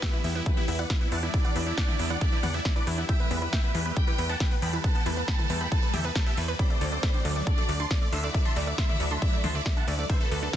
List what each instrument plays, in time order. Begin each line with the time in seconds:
Already playing: violin section B3 B4
0.02 synth arpeggio sound B3, supersaw synth G4 E5, synth pluck E5, kick, snare, closed hi-hat
0.13 synth arpeggio sound E3, synth pluck E4, supersaw synth E4, closed hi-hat
0.24 analog synth bass E2, synth arpeggio sound B3, supersaw synth E4, synth pluck E4, open hi-hat
0.35 synth arpeggio sound B3, synth pluck E4, supersaw synth E4
0.46 synth arpeggio sound E3, violin section B3 B4, kick, closed hi-hat
0.57 synth arpeggio sound B3, supersaw synth E4, synth pluck E4, closed hi-hat
0.68 analog synth bass E2, synth arpeggio sound B3, supersaw synth E4, synth pluck E4, open hi-hat
0.79 synth arpeggio sound E3, supersaw synth D5 F#5, synth pluck F#5, closed hi-hat
0.90 synth arpeggio sound B3, supersaw synth E4, synth pluck E4, kick, snare, closed hi-hat
1.01 synth arpeggio sound B3, supersaw synth E4, synth pluck E4, closed hi-hat
1.12 analog synth bass E2, synth arpeggio sound E3, violin section D4 D5, supersaw synth F#5 A5, synth pluck A5, open hi-hat
1.23 synth arpeggio sound B3, supersaw synth E4, synth pluck E4, closed hi-hat
1.34 synth arpeggio sound B3, supersaw synth E4, synth pluck E4, kick, closed hi-hat
1.45 synth arpeggio sound E3, supersaw synth D5 F#5, synth pluck F#5, closed hi-hat
1.56 analog synth bass E2, synth arpeggio sound B3, supersaw synth E4, synth pluck E4, open hi-hat
1.66 synth arpeggio sound B3, supersaw synth E4, synth pluck E4, closed hi-hat
1.77 synth arpeggio sound E3, supersaw synth F#5 A5, synth pluck A5, kick, snare, closed hi-hat
1.88 synth arpeggio sound B3, supersaw synth E4, synth pluck E4, closed hi-hat, mid tom
1.99 analog synth bass E2, synth arpeggio sound B3, supersaw synth E4, synth pluck E4, open hi-hat
2.10 synth arpeggio sound E3, supersaw synth D5 F#5, synth pluck F#5, closed hi-hat
2.21 synth arpeggio sound B3, supersaw synth E4, synth pluck E4, kick, closed hi-hat
2.32 synth arpeggio sound B3, supersaw synth E4, synth pluck E4, closed hi-hat
2.43 analog synth bass E2, synth arpeggio sound E3, supersaw synth D5 F#5, synth pluck F#5, open hi-hat, mid tom
2.54 synth arpeggio sound B3, supersaw synth E4, synth pluck E4, closed hi-hat
2.65 synth arpeggio sound B3, supersaw synth E4, synth pluck E4, kick, snare, closed hi-hat
2.76 synth arpeggio sound E3, supersaw synth B4 D5, synth pluck D5, closed hi-hat
2.87 analog synth bass E2, synth arpeggio sound B3, supersaw synth E4, synth pluck E4, open hi-hat
2.98 synth arpeggio sound B3, supersaw synth E4, synth pluck E4
3.09 synth arpeggio sound E3, violin section E4 E5, supersaw synth E5 G5, synth pluck G5, kick, closed hi-hat
3.20 synth arpeggio sound B3, supersaw synth B4, synth pluck B4, closed hi-hat
3.31 analog synth bass E2, synth arpeggio sound B3, supersaw synth B4, synth pluck B4, open hi-hat
3.42 synth arpeggio sound E3, supersaw synth B4, synth pluck B4
3.53 synth arpeggio sound B3, supersaw synth E5 G5, synth pluck G5, kick, snare, closed hi-hat
3.64 synth arpeggio sound B3, supersaw synth B4, synth pluck B4, closed hi-hat
3.74 analog synth bass E2, synth arpeggio sound E3, supersaw synth B4, synth pluck B4, open hi-hat
3.85 synth arpeggio sound B3, supersaw synth B4, synth pluck B4
3.97 synth arpeggio sound B3, violin section G4 G5, kick, closed hi-hat
4.07 synth arpeggio sound E3, supersaw synth B4, synth pluck B4, closed hi-hat
4.18 analog synth bass E2, synth arpeggio sound B3, supersaw synth B4, synth pluck B4, open hi-hat
4.29 synth arpeggio sound B3, supersaw synth F#5 A5, synth pluck A5, closed hi-hat
4.40 synth arpeggio sound E3, supersaw synth B4, synth pluck B4, kick, snare, closed hi-hat
4.51 synth arpeggio sound B3, supersaw synth B4, synth pluck B4, closed hi-hat
4.62 analog synth bass E2, synth arpeggio sound B3, violin section A4 A5, supersaw synth G5 B5, synth pluck B5, open hi-hat
4.73 synth arpeggio sound E3, supersaw synth B4, synth pluck B4, closed hi-hat
4.84 synth arpeggio sound B3, supersaw synth B4, synth pluck B4, kick, closed hi-hat
4.95 synth arpeggio sound B3, supersaw synth F#5 A5, synth pluck A5, closed hi-hat
5.06 analog synth bass E2, synth arpeggio sound E3, supersaw synth B4, synth pluck B4, open hi-hat
5.17 synth arpeggio sound B3, supersaw synth B4, synth pluck B4, closed hi-hat
5.28 synth arpeggio sound B3, supersaw synth G5 B5, synth pluck B5, kick, snare, closed hi-hat
5.39 synth arpeggio sound E3, supersaw synth B4, synth pluck B4, closed hi-hat, mid tom
5.50 analog synth bass E2, synth arpeggio sound B3, supersaw synth B4, synth pluck B4, open hi-hat
5.61 synth arpeggio sound B3, supersaw synth G5 B5, synth pluck B5, closed hi-hat
5.72 synth arpeggio sound E3, supersaw synth B4, synth pluck B4, kick, closed hi-hat
5.82 synth arpeggio sound B3, supersaw synth B4, synth pluck B4, closed hi-hat
5.93 analog synth bass E2, synth arpeggio sound G4, supersaw synth E5 G5, synth pluck G5, open hi-hat, mid tom
6.04 synth arpeggio sound B3, supersaw synth B4, synth pluck B4, closed hi-hat
6.15 synth arpeggio sound G3, supersaw synth B4, synth pluck B4, kick, snare, closed hi-hat
6.26 synth arpeggio sound B3, supersaw synth G4 E5, synth pluck E5, closed hi-hat
6.37 analog synth bass E2, synth arpeggio sound E4, supersaw synth B4, synth pluck B4, open hi-hat
6.48 supersaw synth B4, synth arpeggio sound B4, synth pluck B4, closed hi-hat
6.59 synth arpeggio sound A3, violin section C4 C5, supersaw synth D5 B5, synth pluck B5, kick, closed hi-hat
6.70 synth arpeggio sound A3, synth pluck D5, supersaw synth D5, closed hi-hat
6.81 analog synth bass D2, synth arpeggio sound D3, supersaw synth D5, synth pluck D5, open hi-hat
6.92 synth arpeggio sound A3, supersaw synth D5, synth pluck D5
7.03 synth arpeggio sound A3, supersaw synth D5 B5, synth pluck B5, kick, snare, closed hi-hat
7.14 synth arpeggio sound D3, supersaw synth D5, synth pluck D5, closed hi-hat
7.25 analog synth bass D2, synth arpeggio sound A3, supersaw synth D5, synth pluck D5, open hi-hat
7.36 synth arpeggio sound A3, supersaw synth D5, synth pluck D5, closed hi-hat
7.47 synth arpeggio sound D3, violin section D4 D5, kick, closed hi-hat
7.58 synth arpeggio sound A3, supersaw synth D5, synth pluck D5, closed hi-hat
7.69 analog synth bass D2, synth arpeggio sound A3, supersaw synth D5, synth pluck D5, open hi-hat
7.80 synth arpeggio sound D3, supersaw synth A5 C6, synth pluck C6, closed hi-hat
7.91 synth arpeggio sound A3, supersaw synth D5, synth pluck D5, kick, snare, closed hi-hat
8.02 synth arpeggio sound A3, supersaw synth D5, synth pluck D5, closed hi-hat
8.12 analog synth bass D2, synth arpeggio sound D3, violin section E4 E5, supersaw synth C6 E6, synth pluck E6, open hi-hat
8.23 synth arpeggio sound A3, synth pluck D5, supersaw synth D5, closed hi-hat
8.34 synth arpeggio sound A3, synth pluck D5, supersaw synth D5, kick, closed hi-hat
8.45 synth arpeggio sound D3, supersaw synth A5 C6, synth pluck C6, closed hi-hat
8.56 analog synth bass D2, synth arpeggio sound A3, synth pluck D5, supersaw synth D5, open hi-hat
8.67 synth arpeggio sound A3, synth pluck D5, supersaw synth D5, closed hi-hat
8.78 synth arpeggio sound D3, supersaw synth C6 E6, synth pluck E6, kick, snare, closed hi-hat
8.89 synth arpeggio sound A3, supersaw synth D5, synth pluck D5, closed hi-hat, mid tom
9.00 analog synth bass D2, synth arpeggio sound A3, supersaw synth D5, synth pluck D5, open hi-hat
9.11 synth arpeggio sound D3, supersaw synth A5 C6, synth pluck C6, closed hi-hat
9.22 synth arpeggio sound A3, synth pluck D5, supersaw synth D5, kick, closed hi-hat
9.33 synth arpeggio sound A3, synth pluck D5, supersaw synth D5, closed hi-hat
9.44 analog synth bass D2, synth arpeggio sound D3, supersaw synth A5 C6, synth pluck C6, open hi-hat, mid tom
9.55 synth arpeggio sound A3, supersaw synth D5, synth pluck D5
9.66 synth arpeggio sound A3, supersaw synth D5, synth pluck D5, kick, snare, closed hi-hat
9.77 synth arpeggio sound D3, supersaw synth F#5 A5, synth pluck A5, closed hi-hat
9.88 analog synth bass D2, synth arpeggio sound A3, synth pluck D5, supersaw synth D5, open hi-hat
9.99 synth arpeggio sound A3, synth pluck D5, supersaw synth D5
10.10 synth arpeggio sound D3, violin section B3 B4, supersaw synth C5 E5, synth pluck E5, kick, closed hi-hat
10.20 synth arpeggio sound A3, supersaw synth A4, synth pluck A4, closed hi-hat
10.31 analog synth bass D2, synth arpeggio sound A3, synth pluck A4, supersaw synth A4, open hi-hat
10.42 synth arpeggio sound D3, synth pluck A4, supersaw synth A4, closed hi-hat
10.53 synth arpeggio sound A3, kick